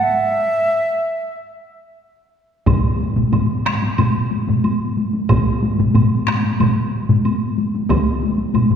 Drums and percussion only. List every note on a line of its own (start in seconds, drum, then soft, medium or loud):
2.67 taiko loud
2.67 taiko low-mid loud
2.67 taiko mid medium
2.67 taiko high medium
2.67 high woodblock medium
3.00 taiko high medium
3.16 taiko low-mid medium
3.16 taiko mid medium
3.16 taiko high medium
3.33 taiko low-mid loud
3.33 taiko mid medium
3.33 taiko high medium
3.33 high woodblock soft
3.65 taiko rim medium
3.65 taiko high medium
3.65 high woodblock soft
3.82 taiko high medium
3.98 taiko low-mid medium
3.98 taiko mid loud
3.98 taiko high medium
3.98 high woodblock medium
4.31 taiko high medium
4.47 taiko low-mid medium
4.47 taiko mid medium
4.47 taiko high medium
4.64 taiko high medium
4.64 high woodblock soft
4.97 taiko high medium
5.13 taiko high medium
5.29 taiko medium
5.29 taiko low-mid loud
5.29 taiko mid loud
5.29 taiko high medium
5.29 high woodblock medium
5.62 taiko high medium
5.78 taiko low-mid medium
5.78 taiko mid medium
5.78 taiko high medium
5.95 taiko low-mid medium
5.95 taiko mid medium
5.95 taiko high medium
5.95 high woodblock soft
6.27 taiko rim medium
6.27 taiko high medium
6.27 high woodblock soft
6.29 taiko rim medium
6.44 taiko high medium
6.60 taiko low-mid medium
6.60 taiko mid medium
6.60 taiko high medium
6.60 high woodblock medium
7.09 taiko low-mid medium
7.09 taiko mid medium
7.09 taiko high medium
7.25 taiko high medium
7.25 high woodblock soft
7.58 taiko high medium
7.74 taiko high medium
7.89 taiko loud
7.89 taiko high medium
7.89 high woodblock soft
8.23 taiko high medium
8.38 taiko high medium
8.54 taiko low-mid medium
8.54 taiko mid medium
8.54 taiko high medium
8.54 high woodblock soft
8.71 taiko low-mid medium
8.71 taiko mid medium